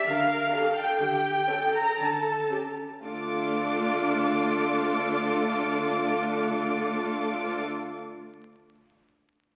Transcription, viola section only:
0.07 0.52 A#4 soft
0.53 1.00 A4 soft
1.02 1.49 G4 soft
1.50 1.99 A4 soft
2.00 2.51 A4 soft
2.51 2.59 G4 soft
3.04 7.60 A3 soft
3.04 7.60 D4 soft

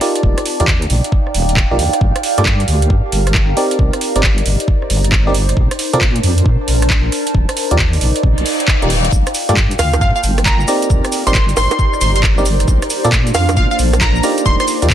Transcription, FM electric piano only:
0.01 0.57 D#4 medium
0.01 0.57 F4 medium
0.01 0.57 G4 medium
0.01 0.57 A#4 medium
0.01 0.57 D5 medium
0.60 0.66 D#4 medium
0.60 0.66 F4 medium
0.60 0.66 G4 medium
0.60 0.66 A#4 medium
0.60 0.66 D5 medium
1.71 1.77 D#4 medium
1.71 1.77 F4 medium
1.71 1.77 G4 medium
1.71 1.77 A#4 medium
1.71 1.77 D5 medium
2.38 2.44 A#3 medium
2.38 2.44 F4 medium
2.38 2.44 G4 medium
2.38 2.44 A4 medium
2.38 2.44 D5 loud
3.57 4.12 C4 medium
3.57 4.12 D#4 medium
3.57 4.12 G4 medium
3.57 4.12 A#4 medium
3.57 4.12 D5 medium
4.16 4.22 C4 medium
4.16 4.22 D#4 medium
4.16 4.22 G4 medium
4.16 4.22 A#4 medium
4.16 4.22 D5 medium
5.27 5.33 C4 medium
5.27 5.33 D#4 medium
5.27 5.33 G4 medium
5.27 5.33 A#4 medium
5.27 5.33 D5 medium
5.93 6.00 C4 medium
5.93 6.00 F4 medium
5.93 6.00 A4 medium
5.93 6.00 A#4 medium
5.93 6.00 D5 loud
7.71 7.77 D#4 medium
7.71 7.77 F4 medium
7.71 7.77 G4 medium
7.71 7.77 A#4 medium
7.71 7.77 D5 medium
8.82 8.89 D#4 medium
8.82 8.89 F4 medium
8.82 8.89 G4 medium
8.82 8.89 A#4 medium
8.82 8.89 D5 medium
9.49 9.55 A#3 medium
9.49 9.55 F4 medium
9.49 9.55 G4 medium
9.49 9.55 A4 medium
9.49 9.55 D5 loud
10.68 11.23 C4 medium
10.68 11.23 D#4 medium
10.68 11.23 G4 medium
10.68 11.23 A#4 medium
10.68 11.23 D5 medium
11.27 11.33 C4 medium
11.27 11.33 D#4 medium
11.27 11.33 G4 medium
11.27 11.33 A#4 medium
11.27 11.33 D5 medium
12.38 12.44 C4 medium
12.38 12.44 D#4 medium
12.38 12.44 G4 medium
12.38 12.44 A#4 medium
12.38 12.44 D5 medium
13.05 13.11 C4 loud
13.05 13.11 F4 medium
13.05 13.11 A4 medium
13.05 13.11 A#4 medium
13.05 13.11 D5 loud
14.23 14.79 D#4 medium
14.23 14.79 F4 medium
14.23 14.79 G4 medium
14.23 14.79 A#4 medium
14.23 14.79 D5 medium
14.82 14.89 D#4 medium
14.82 14.89 F4 medium
14.82 14.89 G4 medium
14.82 14.89 A#4 medium
14.82 14.89 D5 medium

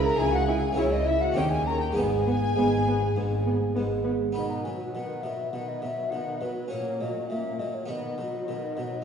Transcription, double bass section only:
0.00 0.12 C#2 loud
0.18 0.70 C#2 medium
0.77 1.29 C#2 medium
1.36 1.89 D#2 medium
1.96 2.49 G#1 medium
2.56 3.09 G#1 medium
3.16 3.69 G#1 medium
3.76 4.28 G#1 medium

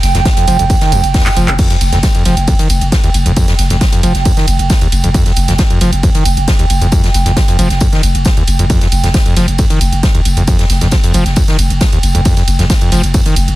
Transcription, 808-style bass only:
0.03 0.14 F1 loud
0.15 0.25 F1 medium
0.47 0.58 F1 loud
0.59 0.70 F1 medium
0.92 1.03 F1 loud
1.04 1.14 F1 medium
1.37 1.47 F1 loud
1.48 1.59 F1 medium
1.81 1.92 F1 loud
1.92 2.03 F1 medium
2.25 2.36 F1 loud
2.37 2.47 F1 medium
2.70 2.81 F1 loud
2.81 2.92 F1 medium
3.14 3.25 F1 loud
3.26 3.36 F1 medium
3.59 3.70 F1 loud
3.70 3.81 F1 medium
4.03 4.14 F1 loud
4.15 4.25 F1 medium
4.48 4.59 F1 loud
4.59 4.70 F1 medium
4.92 5.03 F1 loud
5.04 5.14 F1 medium
5.37 5.48 F1 loud
5.48 5.59 F1 medium
5.81 5.92 F1 loud
5.93 6.03 F1 medium
6.25 6.36 F1 loud
6.37 6.47 F1 medium
6.70 6.81 F1 loud
6.81 6.92 F1 medium
7.14 7.25 F1 loud
7.26 7.36 F1 medium
7.59 7.70 F1 loud
7.70 7.81 F1 medium
8.03 8.14 F1 loud
8.15 8.25 F1 medium
8.48 8.59 F1 loud
8.59 8.70 F1 medium
8.92 9.03 F1 loud
9.04 9.14 F1 medium
9.36 9.47 F1 loud
9.48 9.59 F1 medium
9.81 9.92 F1 loud
9.92 10.03 F1 medium
10.25 10.36 F1 loud
10.37 10.47 F1 medium
10.70 10.81 F1 loud
10.81 10.92 F1 medium
11.14 11.25 F1 loud
11.26 11.36 F1 medium
11.59 11.70 F1 loud
11.70 11.81 F1 medium
12.03 12.14 F1 loud
12.15 12.25 F1 medium
12.48 12.59 F1 loud
12.59 12.70 F1 medium
12.92 13.03 F1 loud
13.04 13.14 F1 medium
13.37 13.48 F1 loud
13.48 13.56 F1 medium

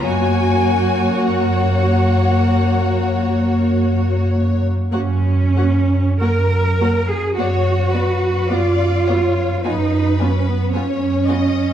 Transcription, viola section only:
0.04 4.70 A#3 medium
0.04 4.70 F#4 medium
4.92 5.00 A#3 medium
4.92 5.00 F#4 medium
5.57 5.65 A#3 soft
5.57 5.65 F#4 soft
6.20 6.28 A#3 soft
6.20 6.28 F#4 soft
6.80 6.89 A#3 soft
6.80 6.88 F#4 soft
7.37 7.46 B3 medium
7.37 7.45 F#4 soft
7.94 8.02 B3 soft
7.94 8.02 F#4 soft
8.50 8.58 B3 medium
8.50 8.58 F#4 medium
9.09 9.17 B3 soft
9.09 9.17 F#4 soft
9.65 9.73 B3 medium
9.65 9.73 F4 medium
10.20 10.28 B3 soft
10.20 10.28 F4 soft
10.75 10.83 B3 soft
10.75 10.83 F4 soft
11.29 11.37 B3 soft
11.29 11.37 F4 soft

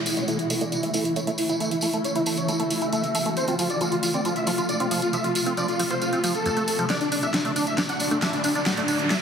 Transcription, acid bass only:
0.17 0.24 E4 medium
0.28 0.38 A3 medium
0.50 0.54 A3 medium
0.61 0.65 A3 loud
0.83 0.90 E4 medium
0.94 1.04 A3 medium
1.16 1.20 A3 medium
1.27 1.31 A3 medium
1.49 1.56 E4 medium
1.60 1.70 A3 medium
1.82 1.86 A3 medium
1.94 1.98 A3 loud
2.16 2.22 E4 medium
2.27 2.37 A3 medium
2.49 2.53 A3 medium
2.60 2.64 A3 loud
2.82 2.88 E4 medium
2.93 3.03 A3 medium
3.15 3.19 A3 medium
3.26 3.30 A3 loud
3.48 3.55 C4 medium
3.59 3.69 F3 medium
3.81 3.85 F3 medium
3.92 3.96 F4 loud
4.14 4.21 C4 medium
4.25 4.35 F3 medium
4.47 4.51 F3 medium
4.58 4.62 F4 loud
4.80 4.87 C4 medium
4.91 5.01 F3 medium
5.13 5.17 F3 medium
5.24 5.28 F4 loud
5.46 5.53 C4 medium
5.57 5.68 F3 medium
5.79 5.84 F3 medium
5.91 5.95 F4 loud
6.13 6.19 C4 medium
6.24 6.34 F3 medium
6.46 6.50 F2 medium
6.57 6.63 A3 medium
6.79 6.86 F3 loud
6.90 7.00 D4 medium
7.12 7.16 D4 medium
7.23 7.27 D4 loud
7.45 7.52 A3 medium
7.56 7.66 D4 medium
7.78 7.82 D4 medium
7.89 7.93 D4 loud
8.11 8.18 A3 medium
8.22 8.32 D4 medium
8.44 8.48 D4 medium
8.55 8.59 D4 loud
8.77 8.84 A3 medium
8.88 8.99 D4 medium
9.10 9.14 D4 medium

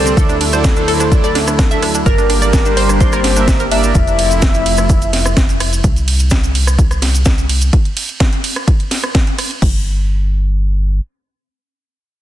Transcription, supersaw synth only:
0.00 0.13 G3 loud
0.00 0.13 C4 medium
0.00 0.13 D4 medium
0.00 0.13 C5 medium
0.00 0.13 D5 loud
0.17 0.36 F#3 medium
0.17 0.36 D4 medium
0.17 0.36 E4 medium
0.17 0.36 A4 medium
0.17 0.36 D5 medium
0.53 0.72 F#3 loud
0.53 0.72 D4 medium
0.53 0.72 E4 medium
0.53 0.72 A4 medium
0.53 0.72 D5 loud
0.77 1.09 F#3 medium
0.77 1.09 D4 medium
0.77 1.09 E4 medium
0.77 1.09 A4 medium
0.77 1.09 C5 loud
1.12 1.31 F#3 medium
1.12 1.31 D4 medium
1.12 1.31 E4 medium
1.12 1.31 A4 medium
1.12 1.31 D5 medium
1.71 1.83 F#3 medium
1.71 1.83 D4 medium
1.71 1.83 E4 medium
1.71 1.83 A4 medium
1.71 1.83 E5 loud
2.06 2.25 G3 medium
2.06 2.25 A#3 medium
2.06 2.25 D4 medium
2.06 2.25 A#4 medium
2.06 2.25 D5 medium
2.42 2.61 G3 medium
2.42 2.61 A#3 medium
2.42 2.61 D4 medium
2.42 2.61 A#4 medium
2.42 2.61 D5 loud
2.66 2.98 G3 medium
2.66 2.98 A#3 medium
2.66 2.98 D4 medium
2.66 2.98 A#4 medium
2.66 2.98 C5 loud
3.01 3.20 G3 medium
3.01 3.20 A#3 medium
3.01 3.20 D4 medium
3.01 3.20 A#4 medium
3.01 3.20 D5 loud
3.37 3.55 G3 medium
3.37 3.55 A#3 medium
3.37 3.55 D4 medium
3.37 3.55 A#4 medium
3.37 3.55 E5 loud
3.72 3.91 G3 loud
3.72 3.91 A#3 medium
3.72 3.91 D4 medium
3.72 3.91 A#4 medium
3.72 3.91 D5 loud

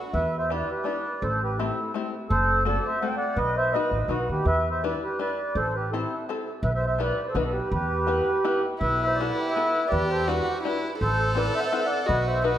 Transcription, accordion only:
0.13 0.37 B4 medium
0.13 0.36 E5 loud
0.38 0.50 C5 medium
0.38 0.51 E5 medium
0.49 0.69 B4 medium
0.49 0.70 D5 medium
0.71 0.86 G4 medium
0.71 0.84 B4 medium
0.85 1.19 B4 medium
0.85 1.23 D5 medium
1.22 1.40 A4 medium
1.22 1.42 C5 loud
1.43 1.58 G4 medium
1.43 1.60 B4 medium
1.58 1.91 E4 medium
1.58 1.92 A4 medium
2.29 2.63 A4 medium
2.29 2.64 C5 loud
2.66 2.84 A4 medium
2.66 2.87 D5 medium
2.86 2.99 C5 medium
2.86 3.03 E5 loud
3.01 3.08 C5 medium
3.01 3.09 F#5 loud
3.07 3.16 G5 medium
3.16 3.36 D5 medium
3.16 3.39 F#5 medium
3.37 3.55 B4 medium
3.37 3.58 D#5 loud
3.57 3.73 C5 medium
3.57 3.75 E5 loud
3.72 4.07 B4 medium
3.72 4.11 D#5 medium
4.09 4.28 F#4 medium
4.09 4.29 B4 medium
4.30 4.46 G4 medium
4.30 4.45 B4 medium
4.46 4.69 B4 medium
4.46 4.69 E5 loud
4.70 4.82 C5 medium
4.70 4.83 E5 medium
4.82 5.01 B4 medium
4.82 5.01 D5 medium
5.03 5.19 G4 medium
5.03 5.19 B4 medium
5.21 5.54 B4 medium
5.21 5.57 D5 medium
5.55 5.74 A4 medium
5.55 5.76 C5 loud
5.75 5.91 G4 medium
5.75 5.90 B4 medium
5.91 6.26 E4 medium
5.91 6.25 A4 medium
6.63 6.70 B4 loud
6.63 6.67 E5 loud
6.69 6.73 E5 loud
6.74 6.86 C5 medium
6.74 6.85 E5 loud
6.86 6.99 C5 medium
6.86 7.00 E5 loud
6.99 7.27 B4 medium
6.99 7.25 D5 medium
7.27 7.37 A4 medium
7.27 7.36 C5 medium
7.36 7.44 F#4 medium
7.36 7.44 B4 medium
7.44 7.52 A4 medium
7.49 7.71 G4 medium
7.49 7.69 B4 medium
7.70 8.62 G4 medium
7.70 8.60 B4 loud
8.79 9.05 B4 medium
8.79 9.02 E5 loud
9.03 9.18 C5 medium
9.03 9.18 E5 loud
9.15 9.37 D5 medium
9.19 9.32 B4 medium
9.34 9.54 G4 medium
9.34 9.52 B4 medium
9.50 9.88 B4 medium
9.50 9.90 E5 medium
9.88 10.10 B4 medium
9.88 10.10 D5 loud
10.10 10.27 A4 medium
10.10 10.28 C5 medium
10.27 10.62 G4 medium
10.27 10.61 B4 medium
11.00 11.35 A4 medium
11.00 11.38 C5 loud
11.36 11.55 B4 medium
11.36 11.54 D5 medium
11.55 11.60 C5 medium
11.55 11.60 E5 loud
11.59 11.64 F#5 loud
11.65 11.71 C5 medium
11.65 11.73 E5 loud
11.72 11.80 C5 medium
11.72 11.80 F#5 medium
11.78 11.87 E5 medium
11.85 12.07 D5 medium
11.85 12.08 F#5 loud
12.06 12.26 B4 medium
12.06 12.28 D#5 loud
12.27 12.43 C5 medium
12.27 12.45 E5 medium
12.44 12.58 B4 medium
12.44 12.58 D#5 medium

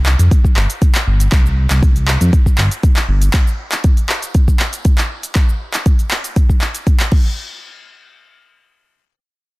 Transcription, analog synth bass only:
0.00 0.16 C2 loud
0.19 0.29 F2 loud
0.56 0.67 G1 medium
1.07 1.28 G1 loud
1.32 1.67 C2 loud
1.71 2.17 C2 medium
2.21 2.31 F2 loud
2.58 2.69 G1 medium
3.08 3.29 G1 medium

